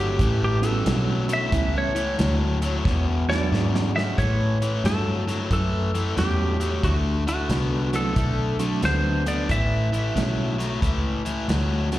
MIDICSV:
0, 0, Header, 1, 6, 480
1, 0, Start_track
1, 0, Tempo, 664452
1, 1097, Time_signature, 4, 2, 24, 8
1, 8661, End_track
2, 0, Start_track
2, 0, Title_t, "Electric slide guitar"
2, 0, Program_c, 0, 29
2, 0, Note_on_c, 0, 67, 82
2, 295, Note_off_c, 0, 67, 0
2, 321, Note_on_c, 0, 67, 89
2, 480, Note_off_c, 0, 67, 0
2, 480, Note_on_c, 0, 69, 90
2, 934, Note_off_c, 0, 69, 0
2, 963, Note_on_c, 0, 76, 90
2, 1261, Note_off_c, 0, 76, 0
2, 1284, Note_on_c, 0, 73, 95
2, 2201, Note_off_c, 0, 73, 0
2, 2381, Note_on_c, 0, 74, 108
2, 2826, Note_off_c, 0, 74, 0
2, 2859, Note_on_c, 0, 76, 104
2, 2902, Note_off_c, 0, 76, 0
2, 3023, Note_on_c, 0, 73, 92
2, 3509, Note_on_c, 0, 69, 86
2, 3514, Note_off_c, 0, 73, 0
2, 3988, Note_off_c, 0, 69, 0
2, 3997, Note_on_c, 0, 69, 85
2, 4465, Note_off_c, 0, 69, 0
2, 4467, Note_on_c, 0, 67, 81
2, 4941, Note_off_c, 0, 67, 0
2, 4944, Note_on_c, 0, 66, 83
2, 5028, Note_off_c, 0, 66, 0
2, 5264, Note_on_c, 0, 66, 78
2, 5748, Note_on_c, 0, 69, 83
2, 5753, Note_off_c, 0, 66, 0
2, 6394, Note_on_c, 0, 72, 85
2, 6406, Note_off_c, 0, 69, 0
2, 6679, Note_off_c, 0, 72, 0
2, 6705, Note_on_c, 0, 74, 78
2, 6870, Note_off_c, 0, 74, 0
2, 6873, Note_on_c, 0, 76, 86
2, 8661, Note_off_c, 0, 76, 0
2, 8661, End_track
3, 0, Start_track
3, 0, Title_t, "Reed electric piano"
3, 0, Program_c, 1, 4
3, 446, Note_on_c, 1, 55, 79
3, 446, Note_on_c, 1, 57, 71
3, 448, Note_on_c, 1, 59, 74
3, 449, Note_on_c, 1, 61, 74
3, 454, Note_on_c, 1, 66, 84
3, 1061, Note_off_c, 1, 55, 0
3, 1061, Note_off_c, 1, 57, 0
3, 1062, Note_off_c, 1, 59, 0
3, 1062, Note_off_c, 1, 61, 0
3, 1065, Note_off_c, 1, 66, 0
3, 1098, Note_on_c, 1, 55, 79
3, 1100, Note_on_c, 1, 59, 75
3, 1102, Note_on_c, 1, 57, 75
3, 1103, Note_on_c, 1, 61, 76
3, 1103, Note_on_c, 1, 64, 92
3, 1379, Note_off_c, 1, 55, 0
3, 1380, Note_off_c, 1, 59, 0
3, 1381, Note_off_c, 1, 57, 0
3, 1382, Note_off_c, 1, 61, 0
3, 1382, Note_off_c, 1, 64, 0
3, 2374, Note_on_c, 1, 54, 83
3, 2374, Note_on_c, 1, 56, 75
3, 2377, Note_on_c, 1, 62, 75
3, 2379, Note_on_c, 1, 59, 75
3, 2379, Note_on_c, 1, 66, 90
3, 2984, Note_off_c, 1, 56, 0
3, 2985, Note_off_c, 1, 54, 0
3, 2986, Note_off_c, 1, 62, 0
3, 2987, Note_off_c, 1, 59, 0
3, 2987, Note_off_c, 1, 66, 0
3, 4457, Note_on_c, 1, 55, 60
3, 4457, Note_on_c, 1, 59, 57
3, 4460, Note_on_c, 1, 61, 55
3, 4465, Note_on_c, 1, 64, 63
3, 4740, Note_off_c, 1, 55, 0
3, 4740, Note_off_c, 1, 59, 0
3, 4741, Note_off_c, 1, 61, 0
3, 4743, Note_off_c, 1, 64, 0
3, 5728, Note_on_c, 1, 54, 74
3, 5728, Note_on_c, 1, 57, 64
3, 5733, Note_on_c, 1, 60, 64
3, 5737, Note_on_c, 1, 64, 78
3, 5880, Note_off_c, 1, 54, 0
3, 5880, Note_off_c, 1, 57, 0
3, 5883, Note_off_c, 1, 60, 0
3, 5885, Note_off_c, 1, 64, 0
3, 6204, Note_on_c, 1, 54, 68
3, 6205, Note_on_c, 1, 57, 64
3, 6205, Note_on_c, 1, 60, 61
3, 6208, Note_on_c, 1, 66, 76
3, 6822, Note_off_c, 1, 54, 0
3, 6822, Note_off_c, 1, 57, 0
3, 6823, Note_off_c, 1, 60, 0
3, 6824, Note_off_c, 1, 66, 0
3, 7334, Note_on_c, 1, 55, 64
3, 7334, Note_on_c, 1, 59, 59
3, 7340, Note_on_c, 1, 61, 56
3, 7345, Note_on_c, 1, 64, 68
3, 7620, Note_off_c, 1, 55, 0
3, 7620, Note_off_c, 1, 59, 0
3, 7623, Note_off_c, 1, 61, 0
3, 7625, Note_off_c, 1, 64, 0
3, 8612, Note_on_c, 1, 55, 55
3, 8614, Note_on_c, 1, 59, 51
3, 8615, Note_on_c, 1, 61, 51
3, 8616, Note_on_c, 1, 66, 62
3, 8661, Note_off_c, 1, 55, 0
3, 8661, Note_off_c, 1, 59, 0
3, 8661, Note_off_c, 1, 61, 0
3, 8661, Note_off_c, 1, 66, 0
3, 8661, End_track
4, 0, Start_track
4, 0, Title_t, "Overdriven electric guitar"
4, 0, Program_c, 2, 29
4, 0, Note_on_c, 2, 45, 72
4, 0, Note_on_c, 2, 54, 81
4, 122, Note_off_c, 2, 45, 0
4, 124, Note_off_c, 2, 54, 0
4, 140, Note_on_c, 2, 45, 84
4, 144, Note_on_c, 2, 52, 92
4, 421, Note_off_c, 2, 45, 0
4, 423, Note_off_c, 2, 52, 0
4, 455, Note_on_c, 2, 45, 80
4, 457, Note_on_c, 2, 52, 84
4, 603, Note_off_c, 2, 45, 0
4, 604, Note_off_c, 2, 52, 0
4, 617, Note_on_c, 2, 45, 86
4, 622, Note_on_c, 2, 54, 90
4, 899, Note_off_c, 2, 45, 0
4, 902, Note_off_c, 2, 54, 0
4, 927, Note_on_c, 2, 45, 85
4, 934, Note_on_c, 2, 54, 93
4, 1078, Note_off_c, 2, 45, 0
4, 1082, Note_off_c, 2, 54, 0
4, 1100, Note_on_c, 2, 45, 94
4, 1101, Note_on_c, 2, 52, 104
4, 1381, Note_off_c, 2, 45, 0
4, 1381, Note_off_c, 2, 52, 0
4, 1410, Note_on_c, 2, 45, 78
4, 1414, Note_on_c, 2, 52, 82
4, 1559, Note_off_c, 2, 45, 0
4, 1561, Note_off_c, 2, 52, 0
4, 1575, Note_on_c, 2, 45, 94
4, 1579, Note_on_c, 2, 54, 101
4, 1858, Note_off_c, 2, 45, 0
4, 1860, Note_off_c, 2, 54, 0
4, 1894, Note_on_c, 2, 45, 74
4, 1899, Note_on_c, 2, 54, 85
4, 2042, Note_off_c, 2, 45, 0
4, 2044, Note_off_c, 2, 54, 0
4, 2063, Note_on_c, 2, 40, 79
4, 2063, Note_on_c, 2, 47, 90
4, 2342, Note_off_c, 2, 40, 0
4, 2342, Note_off_c, 2, 47, 0
4, 2377, Note_on_c, 2, 40, 80
4, 2381, Note_on_c, 2, 47, 81
4, 2523, Note_off_c, 2, 40, 0
4, 2525, Note_off_c, 2, 47, 0
4, 2539, Note_on_c, 2, 40, 94
4, 2545, Note_on_c, 2, 49, 86
4, 2820, Note_off_c, 2, 40, 0
4, 2823, Note_off_c, 2, 49, 0
4, 2857, Note_on_c, 2, 40, 82
4, 2862, Note_on_c, 2, 49, 96
4, 3003, Note_off_c, 2, 40, 0
4, 3005, Note_off_c, 2, 49, 0
4, 3020, Note_on_c, 2, 45, 78
4, 3023, Note_on_c, 2, 52, 83
4, 3300, Note_off_c, 2, 45, 0
4, 3302, Note_off_c, 2, 52, 0
4, 3338, Note_on_c, 2, 45, 69
4, 3340, Note_on_c, 2, 52, 71
4, 3483, Note_off_c, 2, 45, 0
4, 3485, Note_off_c, 2, 52, 0
4, 3498, Note_on_c, 2, 45, 75
4, 3503, Note_on_c, 2, 54, 85
4, 3780, Note_off_c, 2, 45, 0
4, 3782, Note_off_c, 2, 54, 0
4, 3811, Note_on_c, 2, 45, 62
4, 3814, Note_on_c, 2, 54, 67
4, 3960, Note_off_c, 2, 45, 0
4, 3962, Note_off_c, 2, 54, 0
4, 3975, Note_on_c, 2, 45, 72
4, 3982, Note_on_c, 2, 52, 79
4, 4258, Note_off_c, 2, 45, 0
4, 4262, Note_off_c, 2, 52, 0
4, 4296, Note_on_c, 2, 45, 70
4, 4298, Note_on_c, 2, 52, 85
4, 4443, Note_off_c, 2, 45, 0
4, 4444, Note_off_c, 2, 52, 0
4, 4454, Note_on_c, 2, 45, 71
4, 4457, Note_on_c, 2, 54, 80
4, 4738, Note_off_c, 2, 45, 0
4, 4740, Note_off_c, 2, 54, 0
4, 4767, Note_on_c, 2, 45, 67
4, 4771, Note_on_c, 2, 54, 82
4, 4919, Note_off_c, 2, 45, 0
4, 4921, Note_off_c, 2, 54, 0
4, 4936, Note_on_c, 2, 50, 75
4, 4939, Note_on_c, 2, 57, 84
4, 5219, Note_off_c, 2, 50, 0
4, 5221, Note_off_c, 2, 57, 0
4, 5252, Note_on_c, 2, 50, 68
4, 5257, Note_on_c, 2, 57, 72
4, 5402, Note_off_c, 2, 50, 0
4, 5404, Note_off_c, 2, 57, 0
4, 5420, Note_on_c, 2, 50, 74
4, 5422, Note_on_c, 2, 59, 94
4, 5702, Note_off_c, 2, 50, 0
4, 5703, Note_off_c, 2, 59, 0
4, 5729, Note_on_c, 2, 50, 67
4, 5734, Note_on_c, 2, 59, 68
4, 5880, Note_off_c, 2, 50, 0
4, 5883, Note_off_c, 2, 59, 0
4, 5895, Note_on_c, 2, 50, 73
4, 5901, Note_on_c, 2, 57, 80
4, 6180, Note_off_c, 2, 50, 0
4, 6183, Note_off_c, 2, 57, 0
4, 6206, Note_on_c, 2, 50, 76
4, 6210, Note_on_c, 2, 57, 75
4, 6359, Note_off_c, 2, 50, 0
4, 6361, Note_off_c, 2, 57, 0
4, 6374, Note_on_c, 2, 50, 74
4, 6377, Note_on_c, 2, 59, 81
4, 6660, Note_off_c, 2, 50, 0
4, 6661, Note_off_c, 2, 59, 0
4, 6691, Note_on_c, 2, 50, 76
4, 6694, Note_on_c, 2, 59, 79
4, 6842, Note_off_c, 2, 50, 0
4, 6843, Note_off_c, 2, 59, 0
4, 6860, Note_on_c, 2, 45, 78
4, 6862, Note_on_c, 2, 52, 89
4, 7143, Note_off_c, 2, 45, 0
4, 7144, Note_off_c, 2, 52, 0
4, 7169, Note_on_c, 2, 45, 67
4, 7173, Note_on_c, 2, 52, 77
4, 7321, Note_off_c, 2, 45, 0
4, 7323, Note_off_c, 2, 52, 0
4, 7336, Note_on_c, 2, 45, 79
4, 7339, Note_on_c, 2, 54, 95
4, 7621, Note_off_c, 2, 45, 0
4, 7622, Note_off_c, 2, 54, 0
4, 7646, Note_on_c, 2, 45, 64
4, 7651, Note_on_c, 2, 54, 70
4, 7800, Note_off_c, 2, 45, 0
4, 7802, Note_off_c, 2, 54, 0
4, 7812, Note_on_c, 2, 45, 69
4, 7817, Note_on_c, 2, 52, 78
4, 8099, Note_off_c, 2, 45, 0
4, 8101, Note_off_c, 2, 52, 0
4, 8128, Note_on_c, 2, 45, 66
4, 8130, Note_on_c, 2, 52, 74
4, 8281, Note_off_c, 2, 45, 0
4, 8282, Note_off_c, 2, 52, 0
4, 8296, Note_on_c, 2, 45, 71
4, 8300, Note_on_c, 2, 54, 89
4, 8581, Note_off_c, 2, 45, 0
4, 8582, Note_off_c, 2, 54, 0
4, 8610, Note_on_c, 2, 45, 69
4, 8616, Note_on_c, 2, 54, 77
4, 8661, Note_off_c, 2, 45, 0
4, 8661, Note_off_c, 2, 54, 0
4, 8661, End_track
5, 0, Start_track
5, 0, Title_t, "Fingered electric bass"
5, 0, Program_c, 3, 33
5, 0, Note_on_c, 3, 31, 100
5, 125, Note_off_c, 3, 31, 0
5, 142, Note_on_c, 3, 33, 92
5, 605, Note_off_c, 3, 33, 0
5, 622, Note_on_c, 3, 35, 91
5, 1085, Note_off_c, 3, 35, 0
5, 1100, Note_on_c, 3, 37, 83
5, 1563, Note_off_c, 3, 37, 0
5, 1584, Note_on_c, 3, 38, 105
5, 2045, Note_off_c, 3, 38, 0
5, 2062, Note_on_c, 3, 40, 94
5, 2524, Note_off_c, 3, 40, 0
5, 2540, Note_on_c, 3, 44, 96
5, 3004, Note_off_c, 3, 44, 0
5, 3022, Note_on_c, 3, 45, 77
5, 3485, Note_off_c, 3, 45, 0
5, 3497, Note_on_c, 3, 43, 91
5, 3962, Note_off_c, 3, 43, 0
5, 3978, Note_on_c, 3, 42, 82
5, 4443, Note_off_c, 3, 42, 0
5, 4458, Note_on_c, 3, 40, 79
5, 4924, Note_off_c, 3, 40, 0
5, 4938, Note_on_c, 3, 38, 72
5, 5404, Note_off_c, 3, 38, 0
5, 5412, Note_on_c, 3, 36, 90
5, 5881, Note_off_c, 3, 36, 0
5, 5897, Note_on_c, 3, 35, 77
5, 6364, Note_off_c, 3, 35, 0
5, 6377, Note_on_c, 3, 38, 82
5, 6844, Note_off_c, 3, 38, 0
5, 6856, Note_on_c, 3, 33, 75
5, 7324, Note_off_c, 3, 33, 0
5, 7337, Note_on_c, 3, 35, 91
5, 7804, Note_off_c, 3, 35, 0
5, 7818, Note_on_c, 3, 37, 82
5, 8285, Note_off_c, 3, 37, 0
5, 8295, Note_on_c, 3, 38, 85
5, 8661, Note_off_c, 3, 38, 0
5, 8661, End_track
6, 0, Start_track
6, 0, Title_t, "Drums"
6, 139, Note_on_c, 9, 36, 112
6, 139, Note_on_c, 9, 42, 85
6, 211, Note_off_c, 9, 36, 0
6, 212, Note_off_c, 9, 42, 0
6, 455, Note_on_c, 9, 42, 59
6, 527, Note_off_c, 9, 42, 0
6, 622, Note_on_c, 9, 42, 80
6, 631, Note_on_c, 9, 38, 110
6, 694, Note_off_c, 9, 42, 0
6, 703, Note_off_c, 9, 38, 0
6, 933, Note_on_c, 9, 42, 65
6, 1005, Note_off_c, 9, 42, 0
6, 1101, Note_on_c, 9, 36, 107
6, 1102, Note_on_c, 9, 42, 85
6, 1173, Note_off_c, 9, 36, 0
6, 1174, Note_off_c, 9, 42, 0
6, 1415, Note_on_c, 9, 42, 61
6, 1488, Note_off_c, 9, 42, 0
6, 1580, Note_on_c, 9, 42, 87
6, 1590, Note_on_c, 9, 38, 109
6, 1653, Note_off_c, 9, 42, 0
6, 1662, Note_off_c, 9, 38, 0
6, 1892, Note_on_c, 9, 42, 67
6, 1965, Note_off_c, 9, 42, 0
6, 2061, Note_on_c, 9, 36, 117
6, 2072, Note_on_c, 9, 38, 64
6, 2133, Note_off_c, 9, 36, 0
6, 2144, Note_off_c, 9, 38, 0
6, 2394, Note_on_c, 9, 38, 78
6, 2466, Note_off_c, 9, 38, 0
6, 2557, Note_on_c, 9, 38, 73
6, 2629, Note_off_c, 9, 38, 0
6, 2713, Note_on_c, 9, 38, 93
6, 2785, Note_off_c, 9, 38, 0
6, 2874, Note_on_c, 9, 38, 94
6, 2946, Note_off_c, 9, 38, 0
6, 3021, Note_on_c, 9, 36, 98
6, 3024, Note_on_c, 9, 42, 75
6, 3033, Note_on_c, 9, 38, 28
6, 3093, Note_off_c, 9, 36, 0
6, 3096, Note_off_c, 9, 42, 0
6, 3105, Note_off_c, 9, 38, 0
6, 3337, Note_on_c, 9, 42, 55
6, 3409, Note_off_c, 9, 42, 0
6, 3503, Note_on_c, 9, 42, 79
6, 3513, Note_on_c, 9, 38, 106
6, 3576, Note_off_c, 9, 42, 0
6, 3585, Note_off_c, 9, 38, 0
6, 3817, Note_on_c, 9, 42, 57
6, 3827, Note_on_c, 9, 38, 30
6, 3890, Note_off_c, 9, 42, 0
6, 3899, Note_off_c, 9, 38, 0
6, 3979, Note_on_c, 9, 36, 107
6, 3982, Note_on_c, 9, 42, 74
6, 4051, Note_off_c, 9, 36, 0
6, 4054, Note_off_c, 9, 42, 0
6, 4298, Note_on_c, 9, 42, 55
6, 4370, Note_off_c, 9, 42, 0
6, 4460, Note_on_c, 9, 42, 72
6, 4470, Note_on_c, 9, 38, 99
6, 4533, Note_off_c, 9, 42, 0
6, 4542, Note_off_c, 9, 38, 0
6, 4773, Note_on_c, 9, 42, 57
6, 4845, Note_off_c, 9, 42, 0
6, 4937, Note_on_c, 9, 36, 97
6, 4938, Note_on_c, 9, 42, 72
6, 5009, Note_off_c, 9, 36, 0
6, 5010, Note_off_c, 9, 42, 0
6, 5257, Note_on_c, 9, 42, 57
6, 5329, Note_off_c, 9, 42, 0
6, 5415, Note_on_c, 9, 42, 77
6, 5424, Note_on_c, 9, 38, 103
6, 5487, Note_off_c, 9, 42, 0
6, 5496, Note_off_c, 9, 38, 0
6, 5731, Note_on_c, 9, 42, 58
6, 5803, Note_off_c, 9, 42, 0
6, 5897, Note_on_c, 9, 36, 108
6, 5899, Note_on_c, 9, 42, 79
6, 5969, Note_off_c, 9, 36, 0
6, 5971, Note_off_c, 9, 42, 0
6, 6208, Note_on_c, 9, 42, 61
6, 6281, Note_off_c, 9, 42, 0
6, 6375, Note_on_c, 9, 42, 79
6, 6384, Note_on_c, 9, 38, 103
6, 6447, Note_off_c, 9, 42, 0
6, 6456, Note_off_c, 9, 38, 0
6, 6692, Note_on_c, 9, 42, 62
6, 6764, Note_off_c, 9, 42, 0
6, 6859, Note_on_c, 9, 36, 98
6, 6861, Note_on_c, 9, 42, 82
6, 6931, Note_off_c, 9, 36, 0
6, 6933, Note_off_c, 9, 42, 0
6, 7178, Note_on_c, 9, 42, 56
6, 7250, Note_off_c, 9, 42, 0
6, 7344, Note_on_c, 9, 42, 80
6, 7354, Note_on_c, 9, 38, 100
6, 7417, Note_off_c, 9, 42, 0
6, 7426, Note_off_c, 9, 38, 0
6, 7658, Note_on_c, 9, 42, 59
6, 7668, Note_on_c, 9, 38, 30
6, 7731, Note_off_c, 9, 42, 0
6, 7740, Note_off_c, 9, 38, 0
6, 7818, Note_on_c, 9, 36, 101
6, 7822, Note_on_c, 9, 42, 79
6, 7891, Note_off_c, 9, 36, 0
6, 7895, Note_off_c, 9, 42, 0
6, 8133, Note_on_c, 9, 42, 52
6, 8205, Note_off_c, 9, 42, 0
6, 8301, Note_on_c, 9, 42, 70
6, 8310, Note_on_c, 9, 38, 106
6, 8373, Note_off_c, 9, 42, 0
6, 8382, Note_off_c, 9, 38, 0
6, 8611, Note_on_c, 9, 42, 57
6, 8620, Note_on_c, 9, 38, 31
6, 8661, Note_off_c, 9, 38, 0
6, 8661, Note_off_c, 9, 42, 0
6, 8661, End_track
0, 0, End_of_file